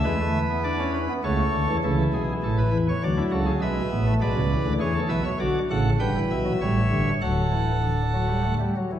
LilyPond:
<<
  \new Staff \with { instrumentName = "Pipe organ" } { \time 3/4 \key d \major \tempo 4 = 100 << { e''4 d''8 b'8 cis''4 | a'8 gis'8 a'16 b'8 cis''16 d''8 a'8 | e''4 d''4 cis''8 e''8 | d''8 fis''8 g''8 e''4. |
fis''2~ fis''8 r8 | } \\ { b'2 a'4 | e'2 d'16 e'16 fis'16 gis'16 | b'4 b'4 gis'16 a'16 b'16 cis''16 | fis'8 a'8 b'4 cis''4 |
a'2~ a'8 r8 | } >> }
  \new Staff \with { instrumentName = "Pipe organ" } { \clef bass \time 3/4 \key d \major << { gis16 a8 b16 d'16 cis'8 b16 a4 | e2 fis4 | gis8 b16 a16 gis8 e4. | d8 cis8 d16 e8 fis16 g8 d8 |
fis8 e8 d8 fis16 g16 a16 g16 fis16 e16 | } \\ { <e, e>2 <cis, cis>8 <d, d>16 <e, e>16 | <cis, cis>8 <b,, b,>8 <a,, a,>8 <e, e>8 <d, d>8 <cis, cis>8 | <b,, b,>8 <a,, a,>8 <b,, b,>16 <cis, cis>8 <d, d>16 <e, e>8 <b,, b,>8 | <b,, b,>8 <a,, a,>8 <g,, g,>8 <b,, b,>8 <a,, a,>8 <g,, g,>8 |
<d,, d,>2~ <d,, d,>8 r8 | } >> }
>>